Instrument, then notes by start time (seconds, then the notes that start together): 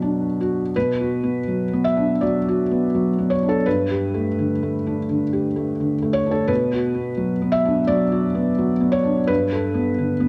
felt piano
Already playing: B2 F#3 D4 F#4 B4
0.02 D4
0.41 F#4
0.76 B2 B4
1.01 F#4
1.23 B3
1.48 F#3
1.73 B3
1.84 E5
1.97 D4
2.21 F#3 D5
2.48 F#4
2.71 B3
2.95 F#3
3.18 B3
3.30 C#5
3.43 D4
3.49 A4
3.66 G2 B4
3.91 G4
4.14 A3
4.39 D3
4.63 A3
4.86 D4
5.09 D3
5.33 G4
5.56 A3
5.80 D3
6.02 A3
6.13 C#5
6.26 D4
6.31 A4
6.48 B2 B4
6.73 F#4
6.94 B3
7.17 F#3
7.42 B3
7.52 E5
7.65 D4
7.87 F#3 D5
8.12 F#4
8.35 B3
8.58 F#3
8.80 B3
8.92 C#5
9.04 D4
9.27 G2 B4
9.53 A4
9.74 B3
9.98 D3
10.20 B3